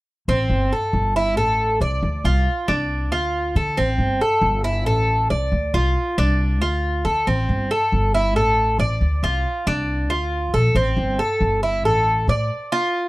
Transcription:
0.28 0.49 A1 medium
0.28 0.71 C4 medium
0.49 0.71 G1 medium
0.73 1.15 A4 medium
0.93 1.37 G1 medium
1.16 1.37 E4 medium
1.37 1.79 A1 medium
1.37 1.80 A4 medium
1.81 2.02 C2 medium
1.81 2.24 D5 medium
2.03 2.24 D2 medium
2.24 2.45 C2 medium
2.24 2.67 F4 medium
2.68 3.12 C2 medium
2.68 3.11 D4 medium
3.12 3.53 D2 medium
3.12 3.54 F4 medium
3.55 3.76 D3 medium
3.55 3.77 A4 medium
3.77 3.98 A1 medium
3.77 4.20 C4 medium
3.98 4.20 G1 medium
4.21 4.64 A4 medium
4.41 4.86 G1 medium
4.64 4.86 E4 medium
4.86 5.28 A1 medium
4.86 5.29 A4 medium
5.30 5.51 C2 medium
5.30 5.73 D5 medium
5.52 5.73 D2 medium
5.74 5.95 C2 medium
5.74 6.16 F4 medium
6.18 6.61 C2 medium
6.18 6.60 D4 medium
6.61 7.02 D2 medium
6.61 7.04 F4 medium
7.05 7.25 D3 medium
7.05 7.26 A4 medium
7.27 7.48 A1 medium
7.27 7.69 C4 medium
7.49 7.69 G1 medium
7.71 8.13 A4 medium
7.92 8.36 G1 medium
8.14 8.35 E4 medium
8.36 8.77 A1 medium
8.36 8.78 A4 medium
8.79 9.00 A1 medium
8.79 9.22 D5 medium
9.01 9.22 D2 medium
9.23 9.44 C2 medium
9.23 9.66 F4 medium
9.67 10.10 C2 medium
9.67 10.09 D4 medium
10.10 10.52 D2 medium
10.10 10.52 F4 medium
10.54 10.74 A#1 medium
10.54 10.75 A4 medium
10.75 10.96 A1 medium
10.75 11.18 C4 medium
10.97 11.18 G1 medium
11.19 11.61 A4 medium
11.40 11.85 G1 medium
11.63 11.84 E4 medium
11.85 12.26 A1 medium
11.85 12.27 A4 medium
12.28 12.49 A2 medium
12.28 12.71 D5 medium
12.72 13.09 F4 medium

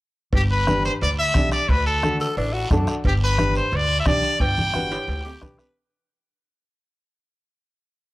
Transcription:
0.33 0.87 G1 loud
0.33 0.42 G4 medium
0.33 bombo low medium
0.33 cowbell medium
0.33 long guiro medium
0.51 0.82 B4 medium
0.67 0.91 D4 medium
0.67 0.91 G4 medium
0.67 0.91 B4 medium
0.67 bombo rim medium
0.67 high conga medium
0.67 short guiro medium
0.85 0.93 C5 medium
0.85 short guiro medium
1.01 1.29 D2 medium
1.01 1.10 D5 loud
1.01 cowbell medium
1.01 long guiro medium
1.19 1.50 E5 loud
1.34 1.48 B1 medium
1.34 1.59 D4 medium
1.34 1.59 G4 medium
1.34 1.59 D5 medium
1.34 bombo low medium
1.34 bombo rim medium
1.34 high conga medium
1.34 low timbale medium
1.34 short guiro medium
1.51 1.71 D5 loud
1.51 bombo rim medium
1.51 short guiro medium
1.69 2.23 D2 loud
1.69 1.86 B4 loud
1.69 bombo low medium
1.69 cowbell medium
1.69 long guiro medium
1.87 2.18 A4 medium
2.03 2.27 D4 medium
2.03 2.26 F#4 medium
2.03 2.27 A4 medium
2.03 bombo rim medium
2.03 high conga medium
2.03 short guiro medium
2.20 2.36 A4 loud
2.20 short guiro medium
2.37 2.64 A1 loud
2.37 2.55 D4 loud
2.37 cowbell medium
2.37 long guiro medium
2.53 2.70 F#4 loud
2.71 2.84 F#2 medium
2.71 2.94 D4 medium
2.71 2.94 F#4 medium
2.71 2.95 A4 loud
2.71 bombo low medium
2.71 bombo rim medium
2.71 high conga medium
2.71 low conga medium
2.71 low timbale medium
2.71 short guiro medium
2.87 bombo rim medium
2.87 short guiro medium
3.04 3.59 G1 loud
3.04 3.14 G4 medium
3.04 bombo low medium
3.04 cowbell medium
3.04 long guiro medium
3.24 3.54 B4 medium
3.38 3.62 D4 medium
3.38 3.62 G4 medium
3.38 3.62 B4 medium
3.38 bombo rim medium
3.38 high conga medium
3.38 short guiro medium
3.55 3.77 C5 medium
3.55 short guiro medium
3.72 3.99 D2 loud
3.72 cowbell medium
3.72 long guiro medium
3.76 3.99 D5 loud
4.00 4.08 E5 medium
4.05 4.20 B1 medium
4.05 4.30 D4 medium
4.05 4.30 G4 medium
4.05 4.40 D5 loud
4.05 4.30 D5 medium
4.05 bombo low medium
4.05 bombo rim medium
4.05 high conga medium
4.05 short guiro medium
4.23 short guiro medium
4.39 4.94 G1 medium
4.39 5.38 G5 loud
4.39 bombo low medium
4.39 cowbell medium
4.39 long guiro medium
4.58 high conga medium
4.58 low conga medium
4.73 4.98 D4 medium
4.73 4.93 F#4 medium
4.73 4.98 G4 medium
4.73 4.99 B4 medium
4.73 bombo rim medium
4.73 high conga medium
4.73 short guiro medium
4.91 5.24 G4 medium
4.91 high timbale loud
4.91 short guiro medium
5.08 5.35 D2 loud
5.08 cowbell medium
5.08 high timbale medium
5.08 long guiro medium
5.25 5.60 G4 loud
5.25 low timbale medium
5.41 5.56 B1 medium
5.41 5.65 D4 medium
5.41 5.66 G4 medium
5.41 5.66 B4 loud
5.41 bombo low medium
5.41 bombo rim medium
5.41 high conga medium
5.41 low conga medium
5.41 short guiro medium
5.59 5.76 B4 medium
5.59 bombo rim medium
5.59 low timbale medium
5.59 short guiro medium

